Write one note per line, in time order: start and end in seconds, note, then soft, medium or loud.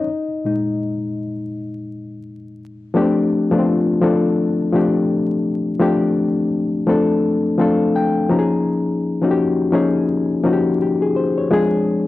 0.00 0.45 D#4 medium
0.00 2.18 D#5 medium
0.45 0.94 A#2 soft
0.45 0.94 G#3 medium
0.45 0.95 D#4 medium
2.94 3.47 F3 loud
2.94 3.47 A3 loud
2.94 3.02 B3 medium
2.94 3.48 D4 loud
2.94 3.48 G4 loud
3.02 3.51 C4 loud
3.51 3.98 F3 medium
3.51 3.99 A3 medium
3.51 3.57 B3 medium
3.51 4.00 D4 medium
3.51 4.00 F4 medium
3.59 4.02 C4 medium
4.01 4.69 F3 loud
4.01 4.69 A3 medium
4.01 4.70 C4 medium
4.01 4.70 D4 medium
4.01 4.70 A4 loud
4.73 5.74 F3 medium
4.73 5.75 A3 medium
4.73 5.75 C4 medium
4.73 5.75 D4 medium
4.73 5.76 G4 loud
5.79 6.81 F3 loud
5.79 6.82 A3 loud
5.79 6.82 C4 loud
5.79 6.82 D4 loud
5.79 6.83 G4 loud
6.87 7.54 F3 loud
6.87 7.55 A3 medium
6.87 7.55 C4 medium
6.87 7.56 D4 medium
6.87 7.56 A4 loud
7.58 8.28 F3 medium
7.58 8.30 A3 medium
7.58 8.30 C4 medium
7.58 8.31 D4 medium
7.58 8.31 A4 loud
7.58 7.92 F5 medium
7.96 8.28 G5 medium
8.29 9.15 F3 loud
8.29 9.16 A#3 medium
8.29 9.16 C#4 medium
8.29 9.16 D#4 medium
8.29 8.38 G4 medium
8.29 8.63 A#5 medium
8.39 9.20 G#4 loud
9.22 9.69 F3 medium
9.22 9.70 A#3 medium
9.22 9.70 C#4 medium
9.22 9.71 D#4 medium
9.22 9.28 F#4 medium
9.31 9.74 G4 loud
9.72 10.40 F3 medium
9.72 10.40 A#3 medium
9.72 10.41 C#4 loud
9.72 10.41 D#4 medium
9.72 10.41 G#4 loud
10.44 11.45 F3 loud
10.44 11.46 A#3 medium
10.44 11.46 C#4 medium
10.44 11.46 D#4 medium
10.44 10.53 F#4 medium
10.53 10.80 G4 loud
10.82 11.00 G4 medium
11.02 11.15 G#4 medium
11.16 11.36 C5 medium
11.38 11.71 C#5 medium
11.50 12.07 F3 loud
11.50 12.07 G#3 loud
11.50 12.07 C4 medium
11.50 12.07 D4 loud
11.50 12.07 G#4 loud